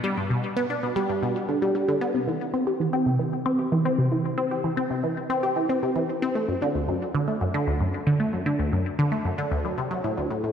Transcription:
\new Staff \with { instrumentName = "Synth arpeggio sound" } { \clef bass \time 4/4 \key c \lydian \tempo 4 = 114 g16 g,16 b,16 r16 b16 d'16 b,16 g16 g,16 b,16 r16 d16 g16 g16 d16 b16 | c16 e16 r16 c'16 g'16 e16 c'16 c16 e16 r16 c'16 g'16 e16 c'16 c16 e16 | r16 c'16 g'16 e16 c'16 c16 e16 r16 c'16 g'16 e16 c'16 c16 e16 r16 c'16 | a16 fis,16 d16 d,16 fis,16 r16 d16 a16 fis,16 d16 d,16 fis,16 r16 d16 a16 fis,16 |
d16 d,16 fis,16 r16 d16 a16 fis,16 d16 d,16 fis,16 c16 fis16 a,16 d,16 a,16 a,16 | }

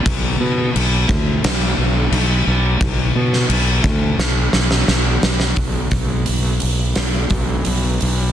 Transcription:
<<
  \new Staff \with { instrumentName = "Fingered electric bass" } { \clef bass \time 4/4 \key b \minor \tempo 4 = 87 b,,8 b,8 b,,8 d,8 b,,8 b,,8 b,,8 b,,8 | b,,8 b,8 b,,8 d,8 b,,8 b,,8 b,,8 b,,8 | b,,8 b,,8 b,,8 b,,8 b,,8 b,,8 b,,8 b,,8 | }
  \new DrumStaff \with { instrumentName = "Drums" } \drummode { \time 4/4 <cymc bd>4 cymc8 bd8 <cymc sn>4 cymc4 | <cymc bd>8. sn16 cymc8 bd8 sn8 sn16 sn16 sn8 sn16 sn16 | <hho bd>8 <hho bd>8 hho8 hho8 <hho sn>8 <hho bd>8 hho8 hho8 | }
>>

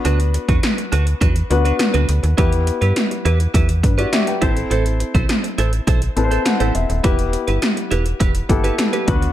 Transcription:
<<
  \new Staff \with { instrumentName = "Clean electric guitar" } { \time 4/4 \key e \minor \tempo 4 = 103 <d' fis' b'>16 r8 <d' fis' b'>16 r8 <d' fis' b'>16 r16 <d' fis' b'>16 r8 <d' fis' b'>16 r16 <d' fis' b'>16 r8 | <e' g' b'>16 r8 <e' g' b'>16 r8 <e' g' b'>16 r16 <e' g' b'>16 r8 <e' g' b'>16 r8 <e' a' c''>16 r16 | <e' a' c''>16 r8 <e' a' c''>16 r8 <e' a' c''>16 r16 <e' a' c''>16 r8 <e' a' c''>16 r16 <e' a' c''>16 r8 | <e' g' b'>16 r8 <e' g' b'>16 r8 <e' g' b'>16 r16 <e' g' b'>16 r8 <e' g' b'>16 r16 <e' g' b'>16 r8 | }
  \new Staff \with { instrumentName = "Grand piano" } { \time 4/4 \key e \minor << { r1 | r2 r8 <d' b'>16 <fis' d''>16 <g' e''>16 <b' g''>8 r16 | r2 r8 a''8 fis''8 e''8 | r1 | } \\ { <b d' fis' b'>4 r4. <b d' fis' b'>4~ <b d' fis' b'>16 r16 | <b e' g' b'>4. r2 <c' e' a' c''>8~ | <c' e' a' c''>4 r4. <c' e' a' b' c''>4~ <c' e' a' b' c''>16 r16 | <b e' g' b'>4. r4 <b e' g' a'>4 <b d' fis' b'>8 | } >> }
  \new Staff \with { instrumentName = "FM bass" } { \clef bass \time 4/4 \key e \minor d,8. e,16 r8 d,8 e,8 d,8 r16 d,16 d,16 dis,16 | e,8. g,16 r8 e,8 e,8 g,8 r8 a,,8 | a,,8. b,,16 r8 a,,8 b,,8 a,,8 r16 a,,16 e,,16 dis,,16 | e,,8. g,,16 r8 e,,8 e,,8 g,,8 r8 d,8 | }
  \new DrumStaff \with { instrumentName = "Drums" } \drummode { \time 4/4 hh16 hh16 hh16 <hh bd>16 <hh sn>16 hh16 hh16 hh16 <hh bd>16 hh16 hh16 hh16 <hh sn>16 hh16 hh16 hh16 | <hh bd>16 hh16 hh16 hh16 <hh sn>16 hh16 hh16 hh16 <hh bd>16 hh16 <hh bd>16 hh16 <hh sn>16 hh16 <hh bd>16 hh16 | hh16 hh16 hh16 <hh bd>16 <hh sn>16 hh16 hh16 hh16 <hh bd>16 hh16 hh16 hh16 <hh sn>16 hh16 hh16 hh16 | <hh bd>16 hh16 hh16 hh16 <hh sn>16 hh16 hh16 hh16 <hh bd>16 hh16 <hh bd>16 hh16 <hh sn>16 hh16 <hh bd>16 hh16 | }
>>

